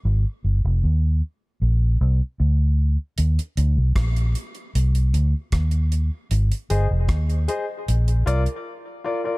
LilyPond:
<<
  \new Staff \with { instrumentName = "Grand piano" } { \time 4/4 \key ees \major \tempo 4 = 77 r1 | r1 | r8 <aes' c'' ees''>16 r8 <c'' ees''>16 <aes' c'' ees''>16 r8. <f' bes' d''>16 r8. <f' bes' d''>16 <f' bes' d''>16 | }
  \new Staff \with { instrumentName = "Fingered electric bass" } { \clef bass \time 4/4 \key ees \major aes,,16 r16 g,,16 f,,16 ees,8 r8 bes,,8 c,16 r16 d,8. r16 | ees,16 r16 d,16 c,16 bes,,8 r8 c,8 d,16 r16 ees,8. r16 | aes,,16 r16 g,,16 f,,16 ees,8 r8 bes,,8 c,16 r4 r16 | }
  \new DrumStaff \with { instrumentName = "Drums" } \drummode { \time 4/4 r4 r4 r4 r4 | hh16 hh16 hh8 <hh bd ss>16 hh16 hh16 hh16 hh16 hh16 hh8 <hh bd ss>16 hh16 hh8 | hh16 hh16 hh8 <hh bd ss>16 hh16 hh8 hh16 hh16 hh16 hh16 r4 | }
>>